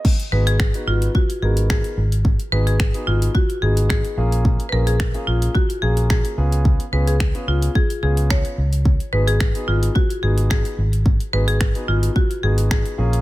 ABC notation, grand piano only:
X:1
M:4/4
L:1/16
Q:1/4=109
K:G#dor
V:1 name="Grand piano"
z2 [B,DFG] z2 [B,DFB]2 z3 [B,DFA]4 z2 | z2 [B,DFG] z2 [B,DFG]2 z3 [B,DFG]4 [A,CEG]2- | [A,CEG] z [A,CEG] z2 [A,CEG]2 z3 [A,CEG]4 [B,CEG]2- | [B,CEG] z [B,CEG] z2 [B,CEG]2 z3 [B,CEG]4 z2 |
z2 [B,DFG] z2 [B,DFG]2 z3 [B,DFG]4 z2 | z2 [B,DFG] z2 [B,DFG]2 z3 [B,DFG]4 [A,CEG]2 |]